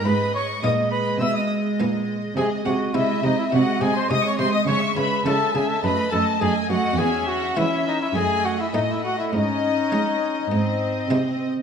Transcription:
X:1
M:4/4
L:1/16
Q:1/4=104
K:G#m
V:1 name="Violin section"
b2 c'2 d'2 b2 e' d' z6 | [K:G#phr] g2 f2 e2 d e f2 g ^b d' c' b d' | c'2 b2 a2 g a b2 a2 g2 f2 | g2 f2 e2 d e g2 f e d e f e |
d12 z4 |]
V:2 name="Violin section"
d4 d12 | [K:G#phr] d2 d2 d2 d2 d2 d2 d2 d2 | e2 e2 e2 e2 d2 d2 d2 d2 | e4 e4 d4 d4 |
d8 d6 z2 |]
V:3 name="Trumpet"
B2 c2 d2 B2 e d z6 | [K:G#phr] G2 F2 E2 D E F2 G ^B d c B d | c2 B2 A2 G A B2 A2 G2 F2 | G2 F2 E2 D E G2 F E D E F E |
D12 z4 |]
V:4 name="Viola section" clef=bass
G,4 G,12 | [K:G#phr] G,2 G,2 G,2 G,2 G,2 G,2 G,2 G,2 | G,2 G,2 G,2 G,2 A,2 A,2 A,2 A,2 | C4 C4 A,4 A,4 |
C8 ^B,6 z2 |]
V:5 name="Harpsichord"
z4 [G,B,D]4 z4 [G,B,D]4 | [K:G#phr] z4 [G,D]4 z4 [G,D]4 | z4 [G,CE]4 z4 D4 | z4 [G,CE]4 z4 [A,D]4 |
z4 [CD]4 z4 [G,^B,D]4 |]
V:6 name="Harpsichord" clef=bass
G,,4 A,,4 B,,4 A,,4 | [K:G#phr] ^B,,2 B,,2 B,,2 B,,2 B,,2 B,,2 B,,2 B,,2 | C,2 C,2 C,2 C,2 F,,2 F,,2 F,,2 F,,2 | E,,4 E,4 F,,4 A,,4 |
G,,4 G,4 G,,4 ^B,,4 |]
V:7 name="Cello section" clef=bass
G,,4 A,,4 B,,4 A,,4 | [K:G#phr] ^B,,2 B,,2 B,,2 B,,2 B,,2 B,,2 B,,2 B,,2 | C,2 C,2 C,2 C,2 F,,2 F,,2 F,,2 F,,2 | E,,4 E,4 F,,4 A,,4 |
G,,4 G,4 G,,4 ^B,,4 |]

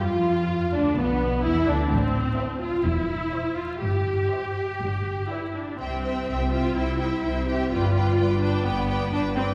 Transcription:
X:1
M:4/4
L:1/8
Q:1/4=126
K:C
V:1 name="Violin section"
F3 D B,2 E D | z2 e2 z2 e2 | z2 e2 z2 g2 | g g g g g g g g |
g g g g g g g g |]
V:2 name="Violin section"
F3 D B,2 E D | z2 c2 z2 c2 | z2 c2 z2 [Bd]2 | [ce] [ce] [ce] [ce] [ce] [ce] [ce] [ce] |
[Bd] [Bd] [Bd] [Bd] [Bd] [Bd] [Bd] [Bd] |]
V:3 name="Viola section"
F3 D B,2 E D | C3 F E3 F | G6 E D | C3 F E3 G |
F3 D B,2 D C |]
V:4 name="Cello section" clef=bass
F,3 D, B,,2 E, D, | A,,2 z2 E,,2 z2 | G,,2 z2 G,,2 z2 | C,2 C,2 C,2 C,2 |
G,,2 G,,2 G,,2 G,,2 |]
V:5 name="Double bass section" clef=bass
F,,3 D,, B,,,2 E,, D,, | A,,,2 z2 E,,,2 z2 | G,,,2 z2 G,,,2 z2 | C,,2 C,,2 C,,2 C,,2 |
G,,,2 G,,,2 G,,,2 G,,,2 |]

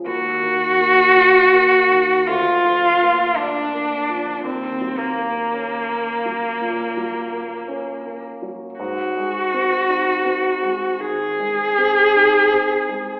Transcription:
X:1
M:4/4
L:1/8
Q:1/4=54
K:Ebdor
V:1 name="Cello"
G4 F2 =D2 | C B,6 z | G4 A4 |]
V:2 name="Grand piano"
(3E,, E, B, (3G B, E, (3=D,, F, B, (3=D B, F, | (3E,, G, B, (3D B, G, (3B,, G, B, (3D B, G, | (3A,, A, C (3E C A, (3E, A, C (3E C A, |]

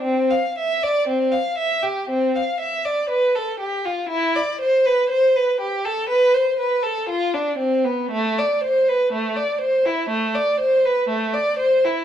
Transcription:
X:1
M:4/4
L:1/16
Q:1/4=60
K:C
V:1 name="Violin"
C f e d C f e G C f e d B A G F | E d c B c B G A B c B A F D C B, | [K:Am] A, d c B A, d c E A, d c B A, d c E |]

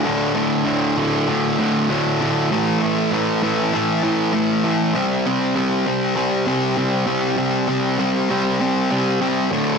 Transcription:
X:1
M:4/4
L:1/8
Q:1/4=98
K:Cmix
V:1 name="Distorted electric guitar" clef=bass
[D,,A,,D,] [D,,A,,D,] [D,,A,,D,] [D,,A,,D,] [D,,A,,D,] [D,,A,,D,] [D,,A,,D,] [D,,A,,D,] | [A,,E,A,] [A,,E,A,] [A,,E,A,] [A,,E,A,] [A,,E,A,] [A,,E,A,] [A,,E,A,] [A,,E,A,] | [C,G,C] [C,G,C] [C,G,C] [C,G,C] [C,G,C] [C,G,C] [C,G,C] [C,G,C] | [C,G,C] [C,G,C] [C,G,C] [C,G,C] [C,G,C] [C,G,C] [C,G,C] [D,,A,,D,] |]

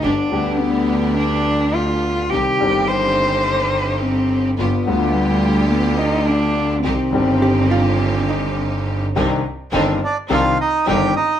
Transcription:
X:1
M:4/4
L:1/8
Q:1/4=106
K:Cm
V:1 name="Bandoneon"
z8 | z8 | z8 | z8 |
z3 [Dd] [Ff] [Ee] [Gg] [Ee] |]
V:2 name="Hollow-body jazz guitar"
z8 | z8 | z8 | z2 G F2 E3 |
z8 |]
V:3 name="String section"
[=B,DG] [B,DG]6- [B,DG] | [CEG] [CEG]6- [CEG] | [=B,FG] [B,FG]6- [B,FG] | [CEG] [CEG]6- [CEG] |
[CDE] z [CDE] z [CDE] z [CDE] z |]
V:4 name="Cello"
D2 =B,2 D2 F2 | G2 c4 C2 | =B,2 G,2 B, E D2 | C6 z2 |
z8 |]
V:5 name="Grand piano" clef=bass
[G,,,G,,D,G,=B,G] [D,,D,G,B,G]6- [D,,D,G,B,G] | [C,,C,E,G,CG] [G,,,G,,E,G,CG]6- [G,,,G,,E,G,CG] | [G,,,G,,D,G,=B,F] [D,,D,G,B,F]6- [D,,D,G,B,F] | [C,,C,E,G,CG] [G,,,G,,E,G,CG]6- [G,,,G,,E,G,CG] |
[C,,C,E,CDG] z [G,,,G,,E,CDG] z [C,,C,E,CDG] z [G,,,G,,E,CDG] z |]
V:6 name="Double bass" clef=bass
G,,, D,,6- D,, | C,, G,,,6- G,,, | G,,, D,,6- D,, | C,, G,,,6- G,,, |
C,, z G,,, z C,, z G,,, z |]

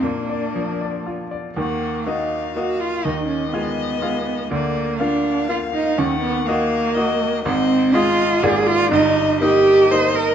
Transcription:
X:1
M:3/4
L:1/8
Q:1/4=122
K:Bb
V:1 name="Violin"
D4- D z | [K:Ebm] g2 f4 | e6 | =d2 f4 |
g2 f2 e2 | [K:Eb] e2 e2 d2 | e2 e4 |]
V:2 name="Cello"
B,4 z2 | [K:Ebm] B,2 E2 G F | E D C4 | B,2 =D2 F E |
D C B,4 | [K:Eb] C2 F2 A F | E2 G2 c B |]
V:3 name="Grand piano"
B,, d F, d F d | [K:Ebm] [E,,E,]2 [B,Ge]2 [B,Ge]2 | [E,,E,]2 [A,Ff]2 [A,Ff]2 | [=D,,=D,]2 [B,Ff]2 [B,Ff]2 |
[E,,E,]2 [B,Ge]2 [B,Ge]2 | [K:Eb] [A,,,A,,]2 [A,Fe]2 [A,,,A,,B,Fd]2 | [G,,,G,,]2 [B,Ee]2 [B,Ee]2 |]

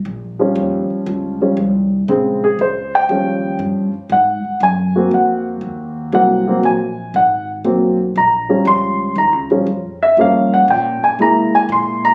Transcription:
X:1
M:4/4
L:1/8
Q:"Swing" 1/4=119
K:Ab
V:1 name="Grand piano"
z8 | z A c g3 z2 | _g2 a2 g z3 | _g2 a2 g z3 |
b2 c'2 b z2 _f | f _g =g a b ^g c' b |]
V:2 name="Grand piano"
z [F,G,D]4 [F,G,D] z2 | [D,A,C] z3 [F,G,D]3 z | z3 [B,C_G]4- [B,CG] | [_G,B,C] [G,B,C] z4 [G,B,C] z |
z [F,G,D]3 z [F,G,D] z2 | [F,B,D]4 [^G,B,=E]4 |]
V:3 name="Upright bass" clef=bass
B,,,2 E,, z D,,2 C,,2 | B,,,2 D,,2 E,,2 G,, z | A,, z _G,,2 F,,2 E,,2 | C,,2 B,,,2 A,,,2 _C,,2 |
B,,,2 D,,2 (3E,, D,, B,,, F,,2 | G,,2 B,, z C, z B,,2 |]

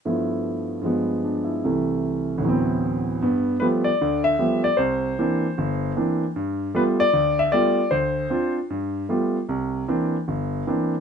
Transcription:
X:1
M:4/4
L:1/16
Q:"Swing" 1/4=153
K:Gmix
V:1 name="Grand piano"
z12 D2 E2- | E z12 z3 | z4 B2 d4 e4 d2 | c12 z4 |
z4 B2 d4 e2 d4 | c6 z8 z2 | z16 |]
V:2 name="Grand piano"
[G,,F,A,B,E]8 [G,,F,_A,B,]8 | [C,,C,E,A,]8 [D,,A,,E,^F,B,C]8 | [G,,B,]4 [F,G,A,B,]2 z2 [D,,D,]4 [F,G,A,B,]2 z2 | C,,4 [E,_B,CD]2 z2 G,,,4 [E,B,CD]2 z2 |
G,,4 [G,A,B,F]2 z2 D,,4 [G,A,B,F]2 z2 | D,,4 [CDF]2 z2 G,,4 [G,A,B,F]2 z2 | C,,4 [E,_B,CD]2 z2 G,,,4 [E,B,CD]2 z2 |]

